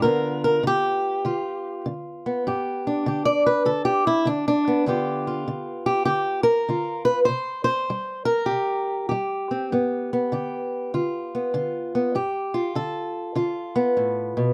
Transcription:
0.02 G2 D3 B3 F4 A#4
0.44 A#4
0.63 D3 G4
1.25 D3 F4
1.86 D3
2.26 B3
2.47 G2 G4
2.87 D4
3.06 D3 G4
3.25 D5
3.46 B4
3.65 D3 A4
3.85 G4
4.07 E4
4.25 D3 D4
4.48 D4
4.68 B3
4.86 G2 D3 B3 F4 G4
5.27 F4
5.48 D3
5.86 G4
6.05 D3 G4
6.43 A#4
6.69 D3 F4
7.05 B4
7.25 C3 C5
7.64 C5
7.90 G3
8.25 A#4
8.46 G4
8.51 C3
9.09 G3 G4
9.51 C4
9.72 G2 B3
10.13 B3
10.32 D3 G4
10.94 D3 F4
11.35 B3
11.54 D3 F4
11.95 B3
12.15 G2 G4
12.54 F4
12.75 D3 A4
13.35 D3 F4
13.76 B3
13.97 A2
14.37 B2

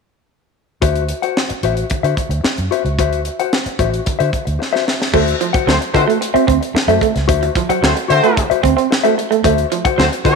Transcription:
0.82 D2 F#4 C5 E5, kick, closed hi-hat
0.96 closed hi-hat
1.09 muted clean electric guitar stroke, closed hi-hat
1.22 F#4 C5 F#5, closed hi-hat
1.37 snare
1.49 muted clean electric guitar stroke, muted fingered electric bass stroke, closed hi-hat
1.63 A1 F#4 C5 E5, closed hi-hat
1.77 muted clean electric guitar stroke, closed hi-hat
1.90 muted clean electric guitar stroke, muted fingered electric bass stroke, kick, closed hi-hat
2.03 D3 F#4 C5 E5, closed hi-hat
2.17 muted clean electric guitar stroke, kick, closed hi-hat
2.29 D2, muted clean electric guitar stroke, closed hi-hat
2.44 muted clean electric guitar stroke, snare
2.58 F#2, closed hi-hat
2.71 F#4 C5 E5, closed hi-hat
2.85 C#2, muted clean electric guitar stroke, closed hi-hat
2.99 D2 F#4 C5 E5, kick, closed hi-hat
3.13 closed hi-hat
3.25 muted clean electric guitar stroke, closed hi-hat
3.40 F#4 C5 F#5, closed hi-hat
3.53 snare
3.66 muted fingered electric bass stroke, muted clean electric guitar stroke, closed hi-hat
3.79 A1 F#4 C5 E5, kick, closed hi-hat
3.92 muted clean electric guitar stroke, closed hi-hat
4.06 muted clean electric guitar stroke, muted fingered electric bass stroke, kick, closed hi-hat
4.19 D3 F#4 C5 E5, closed hi-hat
4.32 muted clean electric guitar stroke, kick, closed hi-hat
4.45 D2, muted clean electric guitar stroke, closed hi-hat
4.59 muted clean electric guitar stroke, snare
4.73 F#4 C5 E5, snare
4.87 muted clean electric guitar stroke, snare
5.00 muted clean electric guitar stroke, snare
5.13 D2 A3 F#4 C5 E5, kick, crash
5.28 closed hi-hat
5.41 F3, muted clean electric guitar stroke, closed hi-hat
5.53 F#4 C5 F#5, muted fingered electric bass stroke, muted clean electric guitar stroke, kick, closed hi-hat
5.67 D2 F#3 A3 C4 F#4 C5, snare
5.81 muted clean electric guitar stroke, closed hi-hat
5.94 D3 A3 C4 F#4 C5 E5, muted clean electric guitar stroke, kick, closed hi-hat
6.07 A3, muted clean electric guitar stroke, closed hi-hat
6.22 muted clean electric guitar stroke, closed hi-hat
6.34 C4 F#4 C5 E5, muted fingered electric bass stroke, closed hi-hat
6.47 D2 C4, kick, closed hi-hat
6.61 muted clean electric guitar stroke, closed hi-hat
6.74 muted fingered electric bass stroke, muted clean electric guitar stroke, snare
6.88 F#2 A3 F#4 C5 E5, closed hi-hat
7.01 A3, muted clean electric guitar stroke, kick, closed hi-hat
7.15 C#2, muted clean electric guitar stroke, snare, closed hi-hat
7.28 D2 F#4 C5 E5, kick, closed hi-hat
7.43 muted clean electric guitar stroke, closed hi-hat
7.55 F3, muted clean electric guitar stroke, kick, closed hi-hat
7.69 F#3 F#4 C5 F#5, muted fingered electric bass stroke, closed hi-hat
7.82 D2 F#3 A3 C4 F#4 C5, snare
7.96 muted clean electric guitar stroke, closed hi-hat
8.08 D3 A3 C4 F#4 C5 E5, closed hi-hat
8.23 A3, muted clean electric guitar stroke, closed hi-hat
8.36 muted clean electric guitar stroke, kick, closed hi-hat
8.50 F#4 C5 E5, muted fingered electric bass stroke, closed hi-hat
8.63 D2 C4, muted clean electric guitar stroke, kick, closed hi-hat
8.77 C4, muted clean electric guitar stroke, closed hi-hat
8.90 muted clean electric guitar stroke, snare
9.03 A3 F#4 C5 E5, closed hi-hat
9.17 muted clean electric guitar stroke, closed hi-hat
9.31 A3, muted clean electric guitar stroke, closed hi-hat
9.44 D2 A3 F#4 C5 E5, kick, closed hi-hat
9.58 closed hi-hat
9.72 F3, muted clean electric guitar stroke, closed hi-hat
9.85 F#4 C5 F#5, muted fingered electric bass stroke, muted clean electric guitar stroke, kick, closed hi-hat
9.98 D2 F#3 A3 C4 F#4 C5, snare
10.12 muted clean electric guitar stroke, closed hi-hat
10.25 D3 A3 C4 F#4 C5 E5, muted clean electric guitar stroke, kick, closed hi-hat

